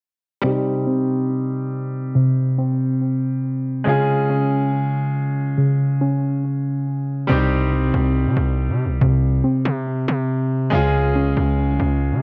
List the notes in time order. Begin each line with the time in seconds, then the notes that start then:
0.42 C3 G3 C4 D#4
0.46 G4
0.87 C4
2.15 C3
2.58 C4
3.84 C#3 G#3 C#4 F4
3.89 G#4
4.30 C#4
5.58 C#3
6.01 C#4
7.27 C2 C3 G3 C4 D#4
7.32 G4
7.72 C4
7.94 C2
8.26 C3
8.37 C2
8.69 C3
8.85 C2
9.01 C2 C3
9.44 C4
9.65 C3
10.08 C3
10.70 C#2 C#3 G#3 C#4 F4
10.75 G#4
11.15 C#4
11.37 C#2
11.69 C2
11.80 C#2
12.12 C#3